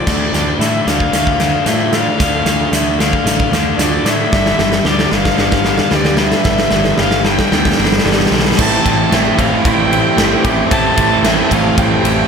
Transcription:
Already playing: F3 A3 A4 D5
0.06 D2 D3 A3 D4 D5, kick, snare, crash
0.32 D2 D3 A3 D4, snare, closed hi-hat
0.59 A2 D3 A3 D4 E4 E5, snare, closed hi-hat
0.85 D2 D3 A3 D4 F5, snare, closed hi-hat
1.00 kick
1.12 D2 D3 A3 D4, snare, closed hi-hat
1.27 kick
1.39 D3 A3 D4, snare, closed hi-hat
1.65 A2 D3 F3 A3 D4 E5, snare, closed hi-hat
1.92 D3 A3 D4 F5, snare, closed hi-hat
2.18 D2 D3 A3 D4, kick, snare, closed hi-hat
2.45 D2 D3 A3 D4, snare, closed hi-hat
2.72 D2 D3 A3 D4 E5, snare, closed hi-hat
2.99 D3 A3 D4 F5, snare, closed hi-hat
3.13 kick
3.25 A1 D3 A3 D4, snare, closed hi-hat
3.40 kick
3.51 D2 D3 A3 D4, snare, closed hi-hat
3.77 D2 D3 F3 A3 D4, snare, closed hi-hat
3.82 D5
4.04 A2 D3 A3 D4, snare, closed hi-hat
4.09 E5
4.31 G1 G2 D3 G3 D4 G4 B4, kick, snare
4.46 snare
4.58 G1 G2 D3 G3, snare
4.72 snare
4.84 D2 G2 D3 G3 G4, snare
4.89 D5
4.99 snare
5.10 G1 G2 D3 G3 D4 F5, snare
5.25 kick, snare
5.37 G1 G2 D3 G3 B3, snare
5.52 kick, snare
5.64 G2 D3 G3 D4, snare
5.78 snare
5.91 D2 G2 D3 G3, snare
5.95 D5
6.05 snare
6.17 G2 D3 G3 D4, snare
6.23 E5
6.32 snare
6.43 G1 G2 D3 G3, kick, snare
6.58 snare
6.70 G1 G2 D3 G3, snare
6.84 snare
6.96 G1 G2 D3 G3 G4, snare
7.01 F5
7.11 snare
7.23 G2 D3 G3 D4, snare
7.29 G5
7.39 kick, snare
7.50 D2 G2 D3 G3 B3, snare
7.65 kick, snare
7.72 snare
7.76 G1 G2 D3 G3 D4, snare
7.85 snare
7.92 snare
7.98 snare
8.03 G1 G2 D3 G3, snare
8.12 snare
8.20 snare
8.26 G2, snare
8.30 B1 D3 G3 D4, snare
8.39 snare
8.45 snare
8.52 snare
8.56 A1 A2 E3 A3 C4 E4 G4 C5 E5 A5, kick, crash
8.82 A1 E3 A3 C4 E4, kick, ride
9.10 A1 E3 G3 A3 C4 E4, snare, ride
9.14 E5
9.36 A1 E3 A3 C4 E4, kick, ride
9.40 A2 F5
9.64 A1 E3 G3 A3 C4 E4 G5, kick, ride
9.90 E3 A3 C4 E4, ride
10.16 G1 A2 E3 A3 C4 E4, snare, ride
10.43 A1 A3 C4 E4 G4, kick, ride
10.68 A1 A2 E3 A3 C4 E4 A5, kick, ride
10.96 A1 E3 A3 C4 E4, kick, ride
11.22 A1 E3 G3 A3 C4 E4 E5, snare, ride
11.49 A1 E3 A3 C4 E4, kick, ride
11.53 A2 F5
11.76 A1 E3 G3 A3 C4 E4, kick, ride
11.81 G5
12.02 A1 E3 A3 C4 E4, ride

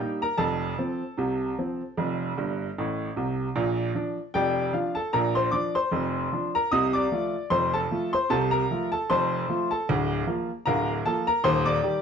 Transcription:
Already playing: G4
0.00 G3 A#3 D#4
0.22 A#4 A#5
0.38 F1 F2 A4 A5
0.78 F3 C4
1.18 C2 C3
1.58 F3 C4
1.97 F1 F2
2.38 G1 G2
2.78 A1 A2
3.16 C2 C3
3.56 A#1 A#2
3.95 F3 D4
4.34 F1 F2 G4 D5 G5
4.73 F3 D4 F4 F5
4.95 A4 A5
5.13 A#1 A#2 A#4 A#5
5.35 C5 C6
5.51 F3 D4 D5 D6
5.75 C5 C6
5.91 F1 F2
6.32 F3 D4
6.55 A#4 A#5
6.72 C2 C3 D#5 D#6
6.93 D5 D6
7.12 F3 A3 F4
7.50 F1 F2 C5 C6
7.73 A4 A5
7.91 F3 A3 F4
8.13 C5 C6
8.30 C2 C3 A4 A5
8.51 A#4 A#5
8.71 F3 A3 F4
8.92 A4 A5
9.10 F1 F2 C5 A5 C6
9.49 F3 A3 F4
9.71 A4 A5
9.89 D1 D2
10.27 F3 A#3 F4
10.66 D1 D2 A#4 F5 A#5
11.06 F3 A#3 F4 A4 A5
11.27 A#4 A#5
11.44 D#1 D#2 C5 C6
11.66 D5 D6
11.83 D#3 G3 G4

